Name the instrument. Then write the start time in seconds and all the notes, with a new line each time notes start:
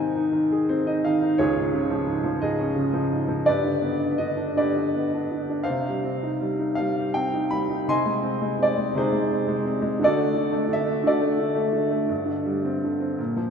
grand piano
Already playing: G#2 D#3 C4 D#4 C5 D#5 G#5
0.16 D#4
0.32 D#3
0.52 G#4
0.69 C4 C5
0.86 D#4 D#5
1.04 D#3 F5
1.22 D#4
1.38 C#2 F4 G#4 C#5
1.56 G#2
1.74 C#3
1.91 F3
2.07 G#2
2.24 F3
2.40 G#2 G#4 D#5
2.59 C#4
2.76 C#3
2.93 F3
3.11 G#2
3.28 F3
3.45 G2 G4 B4 D5
3.64 D3
3.82 B3
4.18 D3 D#5
4.37 D4
4.57 D3 G4 B4 D5
4.77 D4
4.95 B3
5.14 D4
5.31 D3
5.49 D4
5.63 C5 F5
5.69 C3
5.88 G3
6.03 C4
6.23 D#4
6.41 G3
6.59 D#4
6.75 G3 F5
6.99 G4
7.14 C4 G5
7.34 D#4
7.51 G3 B5
7.70 D#4
7.88 C3 D#5 G#5 C6
8.06 G#3
8.22 C4
8.42 G#3
8.59 C4 D5
8.78 G#3
8.95 C3 D#4 G#4 C5
9.12 G#3
9.31 C4
9.48 G#3
9.65 C4
9.82 G#3
9.99 D3 A4
10.04 F#4 D5
10.17 A3
10.34 D3
10.52 A3
10.68 D3
10.73 E5
10.86 A3
11.04 D3 F#4 A4 D5
11.21 A3
11.39 D3
11.55 A3
11.73 D3
11.91 A3
12.09 G2
12.26 D3
12.46 G3
12.65 C4
12.84 D3
13.00 C4
13.19 A#2
13.37 F3